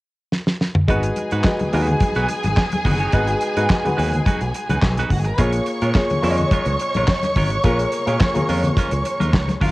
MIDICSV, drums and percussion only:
0, 0, Header, 1, 2, 480
1, 0, Start_track
1, 0, Tempo, 563010
1, 757, Time_signature, 4, 2, 24, 8
1, 8282, End_track
2, 0, Start_track
2, 0, Title_t, "Drums"
2, 275, Note_on_c, 9, 38, 65
2, 360, Note_off_c, 9, 38, 0
2, 400, Note_on_c, 9, 38, 72
2, 485, Note_off_c, 9, 38, 0
2, 520, Note_on_c, 9, 38, 73
2, 605, Note_off_c, 9, 38, 0
2, 640, Note_on_c, 9, 45, 91
2, 725, Note_off_c, 9, 45, 0
2, 754, Note_on_c, 9, 36, 98
2, 754, Note_on_c, 9, 42, 75
2, 839, Note_off_c, 9, 36, 0
2, 840, Note_off_c, 9, 42, 0
2, 879, Note_on_c, 9, 42, 53
2, 964, Note_off_c, 9, 42, 0
2, 991, Note_on_c, 9, 42, 60
2, 995, Note_on_c, 9, 62, 32
2, 1076, Note_off_c, 9, 42, 0
2, 1080, Note_off_c, 9, 62, 0
2, 1118, Note_on_c, 9, 42, 47
2, 1204, Note_off_c, 9, 42, 0
2, 1227, Note_on_c, 9, 39, 80
2, 1230, Note_on_c, 9, 38, 110
2, 1231, Note_on_c, 9, 36, 118
2, 1240, Note_on_c, 9, 62, 29
2, 1312, Note_off_c, 9, 39, 0
2, 1315, Note_off_c, 9, 38, 0
2, 1317, Note_off_c, 9, 36, 0
2, 1326, Note_off_c, 9, 62, 0
2, 1358, Note_on_c, 9, 42, 42
2, 1372, Note_on_c, 9, 63, 60
2, 1372, Note_on_c, 9, 64, 52
2, 1444, Note_off_c, 9, 42, 0
2, 1457, Note_off_c, 9, 63, 0
2, 1457, Note_off_c, 9, 64, 0
2, 1472, Note_on_c, 9, 46, 59
2, 1482, Note_on_c, 9, 62, 32
2, 1558, Note_off_c, 9, 46, 0
2, 1567, Note_off_c, 9, 62, 0
2, 1596, Note_on_c, 9, 42, 39
2, 1605, Note_on_c, 9, 64, 63
2, 1681, Note_off_c, 9, 42, 0
2, 1690, Note_off_c, 9, 64, 0
2, 1707, Note_on_c, 9, 42, 74
2, 1710, Note_on_c, 9, 36, 96
2, 1714, Note_on_c, 9, 62, 31
2, 1714, Note_on_c, 9, 63, 68
2, 1793, Note_off_c, 9, 42, 0
2, 1795, Note_off_c, 9, 36, 0
2, 1799, Note_off_c, 9, 62, 0
2, 1799, Note_off_c, 9, 63, 0
2, 1833, Note_on_c, 9, 42, 39
2, 1918, Note_off_c, 9, 42, 0
2, 1949, Note_on_c, 9, 42, 63
2, 1957, Note_on_c, 9, 62, 37
2, 2034, Note_off_c, 9, 42, 0
2, 2042, Note_off_c, 9, 62, 0
2, 2076, Note_on_c, 9, 42, 49
2, 2093, Note_on_c, 9, 63, 74
2, 2161, Note_off_c, 9, 42, 0
2, 2179, Note_off_c, 9, 63, 0
2, 2191, Note_on_c, 9, 36, 106
2, 2192, Note_on_c, 9, 39, 82
2, 2195, Note_on_c, 9, 38, 98
2, 2201, Note_on_c, 9, 62, 32
2, 2277, Note_off_c, 9, 36, 0
2, 2277, Note_off_c, 9, 39, 0
2, 2280, Note_off_c, 9, 38, 0
2, 2287, Note_off_c, 9, 62, 0
2, 2315, Note_on_c, 9, 42, 46
2, 2327, Note_on_c, 9, 63, 76
2, 2400, Note_off_c, 9, 42, 0
2, 2412, Note_off_c, 9, 63, 0
2, 2429, Note_on_c, 9, 46, 56
2, 2430, Note_on_c, 9, 36, 87
2, 2438, Note_on_c, 9, 62, 35
2, 2438, Note_on_c, 9, 64, 79
2, 2514, Note_off_c, 9, 46, 0
2, 2515, Note_off_c, 9, 36, 0
2, 2523, Note_off_c, 9, 62, 0
2, 2523, Note_off_c, 9, 64, 0
2, 2552, Note_on_c, 9, 42, 45
2, 2637, Note_off_c, 9, 42, 0
2, 2663, Note_on_c, 9, 42, 83
2, 2670, Note_on_c, 9, 36, 96
2, 2680, Note_on_c, 9, 62, 35
2, 2748, Note_off_c, 9, 42, 0
2, 2756, Note_off_c, 9, 36, 0
2, 2765, Note_off_c, 9, 62, 0
2, 2790, Note_on_c, 9, 42, 47
2, 2875, Note_off_c, 9, 42, 0
2, 2904, Note_on_c, 9, 42, 59
2, 2989, Note_off_c, 9, 42, 0
2, 3039, Note_on_c, 9, 42, 43
2, 3125, Note_off_c, 9, 42, 0
2, 3150, Note_on_c, 9, 39, 83
2, 3153, Note_on_c, 9, 36, 111
2, 3153, Note_on_c, 9, 38, 104
2, 3164, Note_on_c, 9, 62, 28
2, 3235, Note_off_c, 9, 39, 0
2, 3238, Note_off_c, 9, 36, 0
2, 3238, Note_off_c, 9, 38, 0
2, 3249, Note_off_c, 9, 62, 0
2, 3285, Note_on_c, 9, 42, 43
2, 3293, Note_on_c, 9, 63, 56
2, 3293, Note_on_c, 9, 64, 57
2, 3370, Note_off_c, 9, 42, 0
2, 3379, Note_off_c, 9, 63, 0
2, 3379, Note_off_c, 9, 64, 0
2, 3401, Note_on_c, 9, 62, 34
2, 3402, Note_on_c, 9, 46, 69
2, 3487, Note_off_c, 9, 46, 0
2, 3487, Note_off_c, 9, 62, 0
2, 3524, Note_on_c, 9, 42, 40
2, 3524, Note_on_c, 9, 64, 63
2, 3609, Note_off_c, 9, 42, 0
2, 3610, Note_off_c, 9, 64, 0
2, 3632, Note_on_c, 9, 36, 99
2, 3633, Note_on_c, 9, 42, 83
2, 3635, Note_on_c, 9, 62, 31
2, 3635, Note_on_c, 9, 63, 63
2, 3717, Note_off_c, 9, 36, 0
2, 3718, Note_off_c, 9, 42, 0
2, 3721, Note_off_c, 9, 62, 0
2, 3721, Note_off_c, 9, 63, 0
2, 3756, Note_on_c, 9, 42, 43
2, 3841, Note_off_c, 9, 42, 0
2, 3872, Note_on_c, 9, 42, 64
2, 3957, Note_off_c, 9, 42, 0
2, 4002, Note_on_c, 9, 42, 48
2, 4010, Note_on_c, 9, 63, 69
2, 4087, Note_off_c, 9, 42, 0
2, 4096, Note_off_c, 9, 63, 0
2, 4111, Note_on_c, 9, 36, 99
2, 4111, Note_on_c, 9, 39, 75
2, 4114, Note_on_c, 9, 38, 102
2, 4120, Note_on_c, 9, 62, 32
2, 4196, Note_off_c, 9, 36, 0
2, 4196, Note_off_c, 9, 39, 0
2, 4199, Note_off_c, 9, 38, 0
2, 4205, Note_off_c, 9, 62, 0
2, 4240, Note_on_c, 9, 42, 46
2, 4244, Note_on_c, 9, 63, 73
2, 4245, Note_on_c, 9, 38, 32
2, 4325, Note_off_c, 9, 42, 0
2, 4330, Note_off_c, 9, 38, 0
2, 4330, Note_off_c, 9, 63, 0
2, 4351, Note_on_c, 9, 36, 78
2, 4352, Note_on_c, 9, 46, 56
2, 4360, Note_on_c, 9, 64, 72
2, 4436, Note_off_c, 9, 36, 0
2, 4437, Note_off_c, 9, 46, 0
2, 4446, Note_off_c, 9, 64, 0
2, 4476, Note_on_c, 9, 42, 46
2, 4562, Note_off_c, 9, 42, 0
2, 4586, Note_on_c, 9, 42, 82
2, 4591, Note_on_c, 9, 36, 93
2, 4672, Note_off_c, 9, 42, 0
2, 4676, Note_off_c, 9, 36, 0
2, 4711, Note_on_c, 9, 42, 54
2, 4796, Note_off_c, 9, 42, 0
2, 4826, Note_on_c, 9, 42, 53
2, 4912, Note_off_c, 9, 42, 0
2, 4959, Note_on_c, 9, 42, 43
2, 5044, Note_off_c, 9, 42, 0
2, 5069, Note_on_c, 9, 39, 82
2, 5072, Note_on_c, 9, 38, 102
2, 5073, Note_on_c, 9, 36, 120
2, 5081, Note_on_c, 9, 62, 27
2, 5155, Note_off_c, 9, 39, 0
2, 5157, Note_off_c, 9, 38, 0
2, 5159, Note_off_c, 9, 36, 0
2, 5166, Note_off_c, 9, 62, 0
2, 5200, Note_on_c, 9, 42, 41
2, 5209, Note_on_c, 9, 63, 57
2, 5209, Note_on_c, 9, 64, 60
2, 5285, Note_off_c, 9, 42, 0
2, 5295, Note_off_c, 9, 63, 0
2, 5295, Note_off_c, 9, 64, 0
2, 5315, Note_on_c, 9, 46, 64
2, 5400, Note_off_c, 9, 46, 0
2, 5438, Note_on_c, 9, 42, 43
2, 5450, Note_on_c, 9, 64, 64
2, 5523, Note_off_c, 9, 42, 0
2, 5536, Note_off_c, 9, 64, 0
2, 5551, Note_on_c, 9, 42, 73
2, 5552, Note_on_c, 9, 62, 28
2, 5552, Note_on_c, 9, 63, 63
2, 5553, Note_on_c, 9, 36, 99
2, 5637, Note_off_c, 9, 42, 0
2, 5638, Note_off_c, 9, 36, 0
2, 5638, Note_off_c, 9, 62, 0
2, 5638, Note_off_c, 9, 63, 0
2, 5674, Note_on_c, 9, 42, 44
2, 5759, Note_off_c, 9, 42, 0
2, 5794, Note_on_c, 9, 42, 62
2, 5879, Note_off_c, 9, 42, 0
2, 5921, Note_on_c, 9, 42, 44
2, 5925, Note_on_c, 9, 63, 71
2, 6006, Note_off_c, 9, 42, 0
2, 6011, Note_off_c, 9, 63, 0
2, 6034, Note_on_c, 9, 36, 101
2, 6034, Note_on_c, 9, 39, 83
2, 6037, Note_on_c, 9, 38, 102
2, 6037, Note_on_c, 9, 62, 33
2, 6119, Note_off_c, 9, 39, 0
2, 6120, Note_off_c, 9, 36, 0
2, 6122, Note_off_c, 9, 38, 0
2, 6122, Note_off_c, 9, 62, 0
2, 6161, Note_on_c, 9, 63, 73
2, 6162, Note_on_c, 9, 42, 45
2, 6168, Note_on_c, 9, 38, 31
2, 6247, Note_off_c, 9, 63, 0
2, 6248, Note_off_c, 9, 42, 0
2, 6253, Note_off_c, 9, 38, 0
2, 6272, Note_on_c, 9, 46, 55
2, 6274, Note_on_c, 9, 36, 86
2, 6276, Note_on_c, 9, 62, 38
2, 6276, Note_on_c, 9, 64, 77
2, 6358, Note_off_c, 9, 46, 0
2, 6359, Note_off_c, 9, 36, 0
2, 6361, Note_off_c, 9, 62, 0
2, 6361, Note_off_c, 9, 64, 0
2, 6395, Note_on_c, 9, 42, 49
2, 6480, Note_off_c, 9, 42, 0
2, 6511, Note_on_c, 9, 42, 79
2, 6516, Note_on_c, 9, 36, 100
2, 6596, Note_off_c, 9, 42, 0
2, 6601, Note_off_c, 9, 36, 0
2, 6643, Note_on_c, 9, 42, 50
2, 6728, Note_off_c, 9, 42, 0
2, 6753, Note_on_c, 9, 42, 59
2, 6838, Note_off_c, 9, 42, 0
2, 6883, Note_on_c, 9, 42, 45
2, 6968, Note_off_c, 9, 42, 0
2, 6997, Note_on_c, 9, 36, 127
2, 6997, Note_on_c, 9, 39, 83
2, 7000, Note_on_c, 9, 38, 107
2, 7004, Note_on_c, 9, 62, 30
2, 7082, Note_off_c, 9, 36, 0
2, 7082, Note_off_c, 9, 39, 0
2, 7085, Note_off_c, 9, 38, 0
2, 7090, Note_off_c, 9, 62, 0
2, 7122, Note_on_c, 9, 42, 47
2, 7129, Note_on_c, 9, 63, 54
2, 7129, Note_on_c, 9, 64, 67
2, 7207, Note_off_c, 9, 42, 0
2, 7215, Note_off_c, 9, 63, 0
2, 7215, Note_off_c, 9, 64, 0
2, 7237, Note_on_c, 9, 46, 67
2, 7244, Note_on_c, 9, 62, 38
2, 7322, Note_off_c, 9, 46, 0
2, 7329, Note_off_c, 9, 62, 0
2, 7361, Note_on_c, 9, 64, 70
2, 7368, Note_on_c, 9, 42, 44
2, 7447, Note_off_c, 9, 64, 0
2, 7454, Note_off_c, 9, 42, 0
2, 7470, Note_on_c, 9, 62, 33
2, 7470, Note_on_c, 9, 63, 59
2, 7476, Note_on_c, 9, 36, 93
2, 7478, Note_on_c, 9, 42, 84
2, 7555, Note_off_c, 9, 62, 0
2, 7555, Note_off_c, 9, 63, 0
2, 7561, Note_off_c, 9, 36, 0
2, 7563, Note_off_c, 9, 42, 0
2, 7599, Note_on_c, 9, 42, 48
2, 7684, Note_off_c, 9, 42, 0
2, 7709, Note_on_c, 9, 62, 36
2, 7717, Note_on_c, 9, 42, 65
2, 7794, Note_off_c, 9, 62, 0
2, 7802, Note_off_c, 9, 42, 0
2, 7844, Note_on_c, 9, 63, 73
2, 7852, Note_on_c, 9, 42, 46
2, 7929, Note_off_c, 9, 63, 0
2, 7937, Note_off_c, 9, 42, 0
2, 7958, Note_on_c, 9, 36, 105
2, 7962, Note_on_c, 9, 39, 83
2, 7965, Note_on_c, 9, 38, 105
2, 8043, Note_off_c, 9, 36, 0
2, 8047, Note_off_c, 9, 39, 0
2, 8050, Note_off_c, 9, 38, 0
2, 8082, Note_on_c, 9, 63, 80
2, 8090, Note_on_c, 9, 42, 45
2, 8095, Note_on_c, 9, 38, 33
2, 8168, Note_off_c, 9, 63, 0
2, 8175, Note_off_c, 9, 42, 0
2, 8181, Note_off_c, 9, 38, 0
2, 8195, Note_on_c, 9, 62, 34
2, 8195, Note_on_c, 9, 64, 76
2, 8196, Note_on_c, 9, 36, 87
2, 8200, Note_on_c, 9, 46, 59
2, 8280, Note_off_c, 9, 62, 0
2, 8280, Note_off_c, 9, 64, 0
2, 8281, Note_off_c, 9, 36, 0
2, 8282, Note_off_c, 9, 46, 0
2, 8282, End_track
0, 0, End_of_file